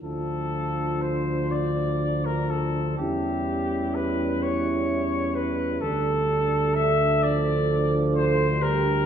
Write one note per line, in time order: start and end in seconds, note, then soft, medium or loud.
0.02 2.94 D2 medium
0.02 2.94 F3 medium
0.02 3.01 D4 medium
0.02 2.94 F4 medium
0.02 1.03 A4 medium
1.01 1.53 C5 medium
1.51 2.27 D5 medium
2.26 2.51 A#4 medium
2.50 2.97 A4 medium
2.98 5.77 E2 medium
2.98 6.92 G3 medium
2.98 5.83 C#4 medium
2.98 5.77 E4 medium
2.98 3.96 G4 medium
3.95 4.44 B4 medium
4.42 5.36 C#5 medium
5.35 5.83 B4 medium
5.81 9.06 D2 medium
5.81 9.06 D4 medium
5.81 8.45 A4 medium
5.81 6.77 A4 medium
6.75 7.25 E5 medium
7.22 8.57 F3 medium
7.22 7.99 D5 medium
8.16 8.64 C5 loud
8.61 9.06 G3 medium
8.61 9.06 G4 medium
8.61 9.06 A#4 medium